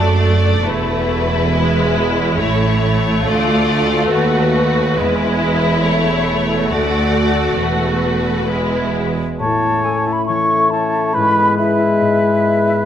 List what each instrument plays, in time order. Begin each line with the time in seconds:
Already playing: double bass section F#1, cello section F#2, viola section A3, violin section D4 D5
0.65 double bass section E1, cello section E2, violin section E4 B4
1.52 viola section G#3
2.38 double bass section A1, cello section A2, viola section A3, violin section C#5
3.24 cello section D2, double bass section D2, violin section F4 D5
4.11 cello section D#2, double bass section D#2, violin section F#4 B4
4.98 double bass section E1, cello section E2, viola section G#3, violin section E4
5.84 viola section A3, violin section C#5
6.71 cello section D2, double bass section D2, violin section F#4 D5
7.60 double bass section E1, cello section E2, violin section B4
8.50 viola section G#3, violin section E4
9.39 harp A2, french horn section A3, clarinet E4, oboe C#5, flute A5
9.63 harp C#4
9.84 harp A4, flute G#5
9.99 flute A5
10.07 harp E4
10.13 flute B5
10.26 harp E3, clarinet E4, oboe C#5, flute C#6
10.51 harp C#4
10.71 clarinet E4, harp A4, oboe C#5, flute A5
10.95 harp E4
11.13 harp G#2, french horn section G#3, clarinet E4, oboe B4, flute B5
11.37 harp B3
11.57 clarinet E4, oboe B4, harp B4, flute E5
11.79 harp E4
12.01 harp G#2
12.23 harp B3
12.45 harp B4
12.67 harp E4